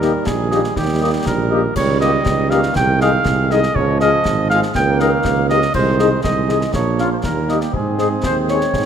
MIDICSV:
0, 0, Header, 1, 7, 480
1, 0, Start_track
1, 0, Key_signature, -4, "major"
1, 0, Tempo, 497925
1, 738, Time_signature, 2, 2, 24, 8
1, 8536, End_track
2, 0, Start_track
2, 0, Title_t, "Cornet"
2, 0, Program_c, 0, 56
2, 0, Note_on_c, 0, 70, 75
2, 259, Note_on_c, 0, 68, 73
2, 274, Note_off_c, 0, 70, 0
2, 739, Note_off_c, 0, 68, 0
2, 744, Note_on_c, 0, 67, 72
2, 1187, Note_off_c, 0, 67, 0
2, 1223, Note_on_c, 0, 70, 71
2, 1667, Note_off_c, 0, 70, 0
2, 1698, Note_on_c, 0, 73, 78
2, 1921, Note_off_c, 0, 73, 0
2, 1934, Note_on_c, 0, 75, 82
2, 2413, Note_on_c, 0, 77, 94
2, 2427, Note_off_c, 0, 75, 0
2, 2655, Note_off_c, 0, 77, 0
2, 2664, Note_on_c, 0, 79, 85
2, 2884, Note_off_c, 0, 79, 0
2, 2906, Note_on_c, 0, 77, 89
2, 3385, Note_on_c, 0, 75, 94
2, 3400, Note_off_c, 0, 77, 0
2, 3618, Note_on_c, 0, 73, 89
2, 3632, Note_off_c, 0, 75, 0
2, 3854, Note_off_c, 0, 73, 0
2, 3860, Note_on_c, 0, 75, 90
2, 4305, Note_off_c, 0, 75, 0
2, 4336, Note_on_c, 0, 77, 96
2, 4445, Note_off_c, 0, 77, 0
2, 4584, Note_on_c, 0, 79, 89
2, 4820, Note_on_c, 0, 77, 88
2, 4834, Note_off_c, 0, 79, 0
2, 5292, Note_off_c, 0, 77, 0
2, 5298, Note_on_c, 0, 75, 93
2, 5521, Note_off_c, 0, 75, 0
2, 5540, Note_on_c, 0, 72, 86
2, 5985, Note_off_c, 0, 72, 0
2, 6011, Note_on_c, 0, 75, 78
2, 6461, Note_off_c, 0, 75, 0
2, 6499, Note_on_c, 0, 73, 74
2, 6834, Note_off_c, 0, 73, 0
2, 6865, Note_on_c, 0, 72, 58
2, 6917, Note_off_c, 0, 72, 0
2, 6985, Note_on_c, 0, 70, 69
2, 7348, Note_on_c, 0, 67, 54
2, 7363, Note_off_c, 0, 70, 0
2, 7463, Note_off_c, 0, 67, 0
2, 7468, Note_on_c, 0, 68, 69
2, 8536, Note_off_c, 0, 68, 0
2, 8536, End_track
3, 0, Start_track
3, 0, Title_t, "Woodwind section"
3, 0, Program_c, 1, 71
3, 19, Note_on_c, 1, 67, 48
3, 21, Note_on_c, 1, 75, 48
3, 105, Note_off_c, 1, 67, 0
3, 107, Note_off_c, 1, 75, 0
3, 498, Note_on_c, 1, 67, 50
3, 499, Note_on_c, 1, 75, 54
3, 585, Note_off_c, 1, 67, 0
3, 585, Note_off_c, 1, 75, 0
3, 972, Note_on_c, 1, 75, 52
3, 974, Note_on_c, 1, 67, 52
3, 1060, Note_off_c, 1, 75, 0
3, 1061, Note_off_c, 1, 67, 0
3, 1457, Note_on_c, 1, 67, 55
3, 1458, Note_on_c, 1, 75, 51
3, 1544, Note_off_c, 1, 67, 0
3, 1544, Note_off_c, 1, 75, 0
3, 1943, Note_on_c, 1, 67, 53
3, 1943, Note_on_c, 1, 75, 50
3, 2028, Note_off_c, 1, 67, 0
3, 2028, Note_off_c, 1, 75, 0
3, 2416, Note_on_c, 1, 75, 55
3, 2419, Note_on_c, 1, 67, 54
3, 2503, Note_off_c, 1, 75, 0
3, 2505, Note_off_c, 1, 67, 0
3, 2900, Note_on_c, 1, 75, 55
3, 2902, Note_on_c, 1, 68, 55
3, 2986, Note_off_c, 1, 75, 0
3, 2987, Note_off_c, 1, 68, 0
3, 3382, Note_on_c, 1, 75, 57
3, 3384, Note_on_c, 1, 68, 58
3, 3467, Note_off_c, 1, 75, 0
3, 3469, Note_off_c, 1, 68, 0
3, 3864, Note_on_c, 1, 68, 51
3, 3865, Note_on_c, 1, 77, 54
3, 3949, Note_off_c, 1, 68, 0
3, 3949, Note_off_c, 1, 77, 0
3, 4345, Note_on_c, 1, 77, 57
3, 4347, Note_on_c, 1, 68, 54
3, 4429, Note_off_c, 1, 77, 0
3, 4431, Note_off_c, 1, 68, 0
3, 4827, Note_on_c, 1, 70, 56
3, 4827, Note_on_c, 1, 75, 52
3, 4911, Note_off_c, 1, 70, 0
3, 4911, Note_off_c, 1, 75, 0
3, 5298, Note_on_c, 1, 70, 58
3, 5298, Note_on_c, 1, 75, 55
3, 5384, Note_off_c, 1, 70, 0
3, 5384, Note_off_c, 1, 75, 0
3, 5777, Note_on_c, 1, 75, 55
3, 5780, Note_on_c, 1, 68, 50
3, 5864, Note_off_c, 1, 75, 0
3, 5866, Note_off_c, 1, 68, 0
3, 6260, Note_on_c, 1, 75, 50
3, 6263, Note_on_c, 1, 68, 51
3, 6346, Note_off_c, 1, 75, 0
3, 6348, Note_off_c, 1, 68, 0
3, 6742, Note_on_c, 1, 65, 43
3, 6744, Note_on_c, 1, 77, 50
3, 6827, Note_off_c, 1, 65, 0
3, 6829, Note_off_c, 1, 77, 0
3, 7223, Note_on_c, 1, 67, 46
3, 7223, Note_on_c, 1, 75, 47
3, 7308, Note_off_c, 1, 67, 0
3, 7309, Note_off_c, 1, 75, 0
3, 7706, Note_on_c, 1, 72, 45
3, 7707, Note_on_c, 1, 75, 41
3, 7791, Note_off_c, 1, 72, 0
3, 7792, Note_off_c, 1, 75, 0
3, 7946, Note_on_c, 1, 72, 56
3, 8052, Note_off_c, 1, 72, 0
3, 8185, Note_on_c, 1, 73, 55
3, 8536, Note_off_c, 1, 73, 0
3, 8536, End_track
4, 0, Start_track
4, 0, Title_t, "French horn section"
4, 0, Program_c, 2, 60
4, 20, Note_on_c, 2, 67, 52
4, 21, Note_on_c, 2, 58, 53
4, 22, Note_on_c, 2, 63, 51
4, 106, Note_off_c, 2, 67, 0
4, 107, Note_off_c, 2, 58, 0
4, 107, Note_off_c, 2, 63, 0
4, 503, Note_on_c, 2, 58, 49
4, 504, Note_on_c, 2, 63, 51
4, 504, Note_on_c, 2, 67, 50
4, 589, Note_off_c, 2, 58, 0
4, 589, Note_off_c, 2, 63, 0
4, 589, Note_off_c, 2, 67, 0
4, 982, Note_on_c, 2, 67, 51
4, 983, Note_on_c, 2, 63, 55
4, 985, Note_on_c, 2, 58, 49
4, 1068, Note_off_c, 2, 63, 0
4, 1068, Note_off_c, 2, 67, 0
4, 1070, Note_off_c, 2, 58, 0
4, 1462, Note_on_c, 2, 63, 51
4, 1462, Note_on_c, 2, 67, 51
4, 1463, Note_on_c, 2, 58, 51
4, 1547, Note_off_c, 2, 63, 0
4, 1547, Note_off_c, 2, 67, 0
4, 1548, Note_off_c, 2, 58, 0
4, 1938, Note_on_c, 2, 63, 53
4, 1938, Note_on_c, 2, 67, 55
4, 1939, Note_on_c, 2, 58, 55
4, 2024, Note_off_c, 2, 63, 0
4, 2024, Note_off_c, 2, 67, 0
4, 2025, Note_off_c, 2, 58, 0
4, 2414, Note_on_c, 2, 58, 56
4, 2414, Note_on_c, 2, 63, 55
4, 2414, Note_on_c, 2, 67, 56
4, 2501, Note_off_c, 2, 58, 0
4, 2501, Note_off_c, 2, 63, 0
4, 2501, Note_off_c, 2, 67, 0
4, 2897, Note_on_c, 2, 56, 55
4, 2897, Note_on_c, 2, 68, 57
4, 2899, Note_on_c, 2, 63, 54
4, 2983, Note_off_c, 2, 56, 0
4, 2984, Note_off_c, 2, 68, 0
4, 2985, Note_off_c, 2, 63, 0
4, 3379, Note_on_c, 2, 63, 59
4, 3381, Note_on_c, 2, 68, 52
4, 3382, Note_on_c, 2, 56, 52
4, 3465, Note_off_c, 2, 63, 0
4, 3466, Note_off_c, 2, 68, 0
4, 3468, Note_off_c, 2, 56, 0
4, 3860, Note_on_c, 2, 68, 56
4, 3861, Note_on_c, 2, 65, 55
4, 3862, Note_on_c, 2, 56, 58
4, 3946, Note_off_c, 2, 65, 0
4, 3946, Note_off_c, 2, 68, 0
4, 3947, Note_off_c, 2, 56, 0
4, 4342, Note_on_c, 2, 56, 54
4, 4342, Note_on_c, 2, 65, 58
4, 4342, Note_on_c, 2, 68, 58
4, 4427, Note_off_c, 2, 56, 0
4, 4428, Note_off_c, 2, 65, 0
4, 4428, Note_off_c, 2, 68, 0
4, 4816, Note_on_c, 2, 67, 55
4, 4817, Note_on_c, 2, 63, 59
4, 4819, Note_on_c, 2, 58, 56
4, 4903, Note_off_c, 2, 67, 0
4, 4904, Note_off_c, 2, 63, 0
4, 4905, Note_off_c, 2, 58, 0
4, 5299, Note_on_c, 2, 63, 51
4, 5300, Note_on_c, 2, 67, 54
4, 5302, Note_on_c, 2, 58, 53
4, 5385, Note_off_c, 2, 63, 0
4, 5386, Note_off_c, 2, 67, 0
4, 5387, Note_off_c, 2, 58, 0
4, 5776, Note_on_c, 2, 63, 56
4, 5778, Note_on_c, 2, 68, 55
4, 5779, Note_on_c, 2, 56, 56
4, 5863, Note_off_c, 2, 63, 0
4, 5864, Note_off_c, 2, 68, 0
4, 5865, Note_off_c, 2, 56, 0
4, 6256, Note_on_c, 2, 63, 50
4, 6258, Note_on_c, 2, 56, 49
4, 6258, Note_on_c, 2, 68, 48
4, 6343, Note_off_c, 2, 63, 0
4, 6344, Note_off_c, 2, 68, 0
4, 6345, Note_off_c, 2, 56, 0
4, 6740, Note_on_c, 2, 65, 46
4, 6741, Note_on_c, 2, 58, 51
4, 6741, Note_on_c, 2, 61, 48
4, 6826, Note_off_c, 2, 65, 0
4, 6827, Note_off_c, 2, 58, 0
4, 6827, Note_off_c, 2, 61, 0
4, 7217, Note_on_c, 2, 67, 43
4, 7218, Note_on_c, 2, 58, 41
4, 7219, Note_on_c, 2, 63, 46
4, 7304, Note_off_c, 2, 67, 0
4, 7305, Note_off_c, 2, 58, 0
4, 7305, Note_off_c, 2, 63, 0
4, 7698, Note_on_c, 2, 63, 46
4, 7699, Note_on_c, 2, 60, 43
4, 7700, Note_on_c, 2, 68, 46
4, 7784, Note_off_c, 2, 63, 0
4, 7786, Note_off_c, 2, 60, 0
4, 7786, Note_off_c, 2, 68, 0
4, 8183, Note_on_c, 2, 68, 43
4, 8184, Note_on_c, 2, 60, 40
4, 8184, Note_on_c, 2, 63, 41
4, 8269, Note_off_c, 2, 60, 0
4, 8269, Note_off_c, 2, 63, 0
4, 8269, Note_off_c, 2, 68, 0
4, 8536, End_track
5, 0, Start_track
5, 0, Title_t, "Trombone section"
5, 0, Program_c, 3, 61
5, 0, Note_on_c, 3, 51, 60
5, 0, Note_on_c, 3, 55, 54
5, 1658, Note_off_c, 3, 51, 0
5, 1660, Note_off_c, 3, 55, 0
5, 1699, Note_on_c, 3, 51, 65
5, 1699, Note_on_c, 3, 55, 61
5, 2619, Note_off_c, 3, 55, 0
5, 2661, Note_on_c, 3, 56, 63
5, 3579, Note_off_c, 3, 51, 0
5, 3621, Note_on_c, 3, 53, 63
5, 4540, Note_off_c, 3, 56, 0
5, 4541, Note_off_c, 3, 53, 0
5, 4576, Note_on_c, 3, 58, 62
5, 4581, Note_on_c, 3, 51, 66
5, 5377, Note_off_c, 3, 51, 0
5, 5377, Note_off_c, 3, 58, 0
5, 5541, Note_on_c, 3, 51, 65
5, 5541, Note_on_c, 3, 56, 62
5, 5986, Note_off_c, 3, 51, 0
5, 5986, Note_off_c, 3, 56, 0
5, 6009, Note_on_c, 3, 51, 56
5, 6010, Note_on_c, 3, 56, 54
5, 6460, Note_off_c, 3, 51, 0
5, 6460, Note_off_c, 3, 56, 0
5, 6488, Note_on_c, 3, 58, 57
5, 6491, Note_on_c, 3, 53, 55
5, 6941, Note_off_c, 3, 53, 0
5, 6965, Note_off_c, 3, 58, 0
5, 6974, Note_on_c, 3, 55, 48
5, 6976, Note_on_c, 3, 58, 46
5, 7424, Note_off_c, 3, 58, 0
5, 7450, Note_on_c, 3, 60, 56
5, 7451, Note_on_c, 3, 56, 54
5, 7456, Note_off_c, 3, 55, 0
5, 8536, Note_off_c, 3, 56, 0
5, 8536, Note_off_c, 3, 60, 0
5, 8536, End_track
6, 0, Start_track
6, 0, Title_t, "Tuba"
6, 0, Program_c, 4, 58
6, 0, Note_on_c, 4, 39, 67
6, 179, Note_off_c, 4, 39, 0
6, 259, Note_on_c, 4, 34, 61
6, 659, Note_off_c, 4, 34, 0
6, 734, Note_on_c, 4, 39, 67
6, 1135, Note_off_c, 4, 39, 0
6, 1215, Note_on_c, 4, 34, 64
6, 1616, Note_off_c, 4, 34, 0
6, 1700, Note_on_c, 4, 37, 70
6, 2098, Note_off_c, 4, 37, 0
6, 2175, Note_on_c, 4, 37, 65
6, 2576, Note_off_c, 4, 37, 0
6, 2657, Note_on_c, 4, 36, 71
6, 3057, Note_off_c, 4, 36, 0
6, 3137, Note_on_c, 4, 36, 65
6, 3537, Note_off_c, 4, 36, 0
6, 3620, Note_on_c, 4, 37, 74
6, 4018, Note_off_c, 4, 37, 0
6, 4098, Note_on_c, 4, 32, 66
6, 4464, Note_off_c, 4, 32, 0
6, 4584, Note_on_c, 4, 37, 72
6, 4981, Note_off_c, 4, 37, 0
6, 5062, Note_on_c, 4, 37, 69
6, 5460, Note_off_c, 4, 37, 0
6, 5544, Note_on_c, 4, 36, 73
6, 5941, Note_off_c, 4, 36, 0
6, 6022, Note_on_c, 4, 36, 62
6, 6420, Note_off_c, 4, 36, 0
6, 6500, Note_on_c, 4, 34, 66
6, 6899, Note_off_c, 4, 34, 0
6, 6982, Note_on_c, 4, 39, 57
6, 7380, Note_off_c, 4, 39, 0
6, 7462, Note_on_c, 4, 44, 54
6, 7860, Note_off_c, 4, 44, 0
6, 7938, Note_on_c, 4, 39, 54
6, 8339, Note_off_c, 4, 39, 0
6, 8424, Note_on_c, 4, 44, 50
6, 8536, Note_off_c, 4, 44, 0
6, 8536, End_track
7, 0, Start_track
7, 0, Title_t, "Drums"
7, 19, Note_on_c, 9, 38, 46
7, 115, Note_off_c, 9, 38, 0
7, 258, Note_on_c, 9, 35, 63
7, 258, Note_on_c, 9, 38, 72
7, 354, Note_off_c, 9, 35, 0
7, 354, Note_off_c, 9, 38, 0
7, 498, Note_on_c, 9, 38, 45
7, 594, Note_off_c, 9, 38, 0
7, 618, Note_on_c, 9, 38, 40
7, 715, Note_off_c, 9, 38, 0
7, 736, Note_on_c, 9, 35, 65
7, 736, Note_on_c, 9, 38, 54
7, 832, Note_off_c, 9, 35, 0
7, 832, Note_off_c, 9, 38, 0
7, 1218, Note_on_c, 9, 35, 65
7, 1218, Note_on_c, 9, 38, 70
7, 1315, Note_off_c, 9, 35, 0
7, 1315, Note_off_c, 9, 38, 0
7, 1695, Note_on_c, 9, 35, 71
7, 1695, Note_on_c, 9, 49, 42
7, 1792, Note_off_c, 9, 35, 0
7, 1792, Note_off_c, 9, 49, 0
7, 1938, Note_on_c, 9, 38, 50
7, 2034, Note_off_c, 9, 38, 0
7, 2178, Note_on_c, 9, 35, 71
7, 2178, Note_on_c, 9, 38, 67
7, 2274, Note_off_c, 9, 35, 0
7, 2274, Note_off_c, 9, 38, 0
7, 2418, Note_on_c, 9, 38, 46
7, 2514, Note_off_c, 9, 38, 0
7, 2536, Note_on_c, 9, 38, 42
7, 2632, Note_off_c, 9, 38, 0
7, 2658, Note_on_c, 9, 35, 68
7, 2658, Note_on_c, 9, 38, 68
7, 2754, Note_off_c, 9, 35, 0
7, 2754, Note_off_c, 9, 38, 0
7, 2899, Note_on_c, 9, 38, 47
7, 2996, Note_off_c, 9, 38, 0
7, 3137, Note_on_c, 9, 35, 66
7, 3137, Note_on_c, 9, 38, 63
7, 3233, Note_off_c, 9, 35, 0
7, 3233, Note_off_c, 9, 38, 0
7, 3380, Note_on_c, 9, 38, 47
7, 3477, Note_off_c, 9, 38, 0
7, 3501, Note_on_c, 9, 38, 43
7, 3597, Note_off_c, 9, 38, 0
7, 3622, Note_on_c, 9, 35, 68
7, 3718, Note_off_c, 9, 35, 0
7, 3860, Note_on_c, 9, 38, 45
7, 3956, Note_off_c, 9, 38, 0
7, 4101, Note_on_c, 9, 35, 64
7, 4101, Note_on_c, 9, 38, 68
7, 4197, Note_off_c, 9, 35, 0
7, 4197, Note_off_c, 9, 38, 0
7, 4342, Note_on_c, 9, 38, 46
7, 4438, Note_off_c, 9, 38, 0
7, 4461, Note_on_c, 9, 38, 44
7, 4558, Note_off_c, 9, 38, 0
7, 4578, Note_on_c, 9, 35, 66
7, 4578, Note_on_c, 9, 38, 63
7, 4674, Note_off_c, 9, 35, 0
7, 4674, Note_off_c, 9, 38, 0
7, 4818, Note_on_c, 9, 38, 47
7, 4915, Note_off_c, 9, 38, 0
7, 5059, Note_on_c, 9, 35, 66
7, 5059, Note_on_c, 9, 38, 65
7, 5155, Note_off_c, 9, 35, 0
7, 5155, Note_off_c, 9, 38, 0
7, 5300, Note_on_c, 9, 38, 44
7, 5396, Note_off_c, 9, 38, 0
7, 5420, Note_on_c, 9, 38, 44
7, 5516, Note_off_c, 9, 38, 0
7, 5538, Note_on_c, 9, 35, 68
7, 5538, Note_on_c, 9, 49, 29
7, 5634, Note_off_c, 9, 35, 0
7, 5634, Note_off_c, 9, 49, 0
7, 5777, Note_on_c, 9, 38, 49
7, 5873, Note_off_c, 9, 38, 0
7, 6018, Note_on_c, 9, 35, 69
7, 6018, Note_on_c, 9, 38, 64
7, 6115, Note_off_c, 9, 35, 0
7, 6115, Note_off_c, 9, 38, 0
7, 6258, Note_on_c, 9, 38, 47
7, 6355, Note_off_c, 9, 38, 0
7, 6376, Note_on_c, 9, 38, 45
7, 6472, Note_off_c, 9, 38, 0
7, 6493, Note_on_c, 9, 35, 70
7, 6493, Note_on_c, 9, 38, 65
7, 6590, Note_off_c, 9, 35, 0
7, 6590, Note_off_c, 9, 38, 0
7, 6733, Note_on_c, 9, 38, 42
7, 6830, Note_off_c, 9, 38, 0
7, 6976, Note_on_c, 9, 35, 68
7, 6976, Note_on_c, 9, 38, 63
7, 7072, Note_off_c, 9, 35, 0
7, 7072, Note_off_c, 9, 38, 0
7, 7219, Note_on_c, 9, 38, 42
7, 7316, Note_off_c, 9, 38, 0
7, 7336, Note_on_c, 9, 38, 45
7, 7433, Note_off_c, 9, 38, 0
7, 7457, Note_on_c, 9, 35, 64
7, 7554, Note_off_c, 9, 35, 0
7, 7699, Note_on_c, 9, 38, 45
7, 7796, Note_off_c, 9, 38, 0
7, 7938, Note_on_c, 9, 35, 65
7, 7938, Note_on_c, 9, 38, 69
7, 8034, Note_off_c, 9, 35, 0
7, 8034, Note_off_c, 9, 38, 0
7, 8179, Note_on_c, 9, 38, 44
7, 8276, Note_off_c, 9, 38, 0
7, 8301, Note_on_c, 9, 38, 40
7, 8397, Note_off_c, 9, 38, 0
7, 8421, Note_on_c, 9, 35, 69
7, 8421, Note_on_c, 9, 38, 53
7, 8517, Note_off_c, 9, 35, 0
7, 8517, Note_off_c, 9, 38, 0
7, 8536, End_track
0, 0, End_of_file